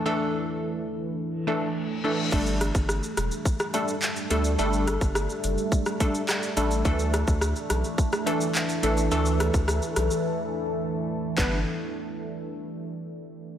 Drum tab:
CC |----------------|x---------------|----------------|----------------|
HH |----------------|--x---x---x---x-|--x---x---x---x-|--x---x---x---x-|
SH |----------------|xxxxxxxxxxxxxxxx|xxxxxxxxxxxxxxxx|xxxxxxxxxxxxxxxx|
CP |----------------|------------x---|------------x---|------------x---|
SD |----------------|--r-r-r--r------|--r-r----r--r---|--r-r-r--r------|
BD |----------------|o--o----o-------|---o----o-o-----|o--o----o-------|

CC |----------------|----------------|
HH |--x---x---------|----------------|
SH |xxxxxxxx--------|----------------|
CP |----------------|x---------------|
SD |--r-r-r---------|----------------|
BD |---o------------|o---------------|